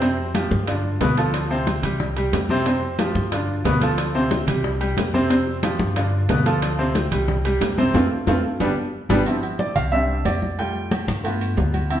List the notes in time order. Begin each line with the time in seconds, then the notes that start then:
Already playing: F2
0.01 C3 C4 C5, high bongo, high conga, high timbale
0.18 high bongo, high conga
0.34 F3 F4 G4, high bongo, high conga, high timbale, low timbale
0.51 G2, high bongo, high conga
0.67 D3 D4 F4, high bongo, high conga, high timbale
0.84 high conga
1.00 D2 B2 B3 B4, high bongo, low bongo, high conga, high timbale, low timbale
1.17 F3 F4 A4, high bongo, high timbale
1.34 high bongo, high conga, high timbale
1.50 C3 C4 C5, high bongo, high conga
1.67 high bongo, high conga, high timbale, low timbale
1.83 C2 G3 G4, high bongo, high conga, low conga, high timbale
2.00 high bongo, high conga, low conga
2.16 G3 G4, high conga, high timbale
2.32 F2, high bongo, low bongo, high conga, high timbale, low timbale
2.49 C3 C4 C5, high bongo, high conga
2.66 C3 C4 C5, high bongo, high conga, high timbale
2.82 high bongo, high conga
2.99 F3 F4 G4, high bongo, high conga, high timbale, low timbale
3.15 G2, high bongo, high conga
3.32 D3 D4 F4, high bongo, high conga, high timbale
3.49 high conga
3.64 D2 B2 B3 B4, high bongo, low bongo, high conga, high timbale, low timbale
3.81 F3 F4 A4, high bongo, high conga, high timbale
3.98 high bongo, high conga, high timbale
4.14 C3 C4 C5, high bongo, high conga
4.31 high bongo, high conga, high timbale, low timbale
4.47 C2 G3 G4, high bongo, high conga, low conga, high timbale
4.64 high bongo, high conga
4.80 G3 G4, high conga, high timbale
4.96 F2, high bongo, low bongo, high conga, high timbale, low timbale
5.14 C3 C4 C5, high bongo, high conga
5.30 C3 C4 C5, high bongo, high conga, high timbale
5.47 high bongo, high conga
5.63 F3 F4 G4, high bongo, high conga, high timbale, low timbale
5.79 G2, high bongo, high conga
5.96 D3 D4 F4, high bongo, high conga, high timbale
6.13 high conga
6.29 D2 B2 B3 B4, high bongo, low bongo, high conga, high timbale, low timbale
6.46 F3 F4 A4, high bongo, high conga, high timbale
6.62 high bongo, high conga, high timbale
6.78 C3 C4 C5, high bongo, high conga
6.95 high bongo, high conga, high timbale, low timbale
7.11 C2 G3 G4, high bongo, high conga, low conga, high timbale
7.28 high bongo, high conga, low conga
7.44 G3 G4, high conga, high timbale
7.61 F2, high bongo, low bongo, high conga, high timbale, low timbale
7.78 C3 C4 C5, high bongo, high conga
7.94 F2 A3 C4 F4, high bongo, high conga, high timbale
8.27 F2 A3 C4 F4, high bongo, high conga, high timbale
8.60 G1 G3 B3 D4, high bongo, high conga, high timbale
9.09 G1 G3 B3 D4, high bongo, high conga, high timbale
9.26 F3 C4 E4, high conga, low agogo
9.43 high conga, low agogo
9.59 D5, high conga, low timbale
9.76 C2 F5, high conga, low conga, low agogo
9.92 G3 C4 D4 E5, high conga
10.09 high conga
10.25 F2 D5, high conga, low timbale, low agogo
10.42 high conga
10.58 G3 A3 F4 G5, high conga, low agogo
10.75 high conga
10.91 high conga, low timbale, low agogo
11.07 G2, high conga, low agogo
11.24 A3 B3 F4, high conga, low agogo
11.41 high conga, low agogo
11.57 D2, high conga, low timbale
11.74 high conga, low agogo
11.90 F3 C4 E4, high conga, low agogo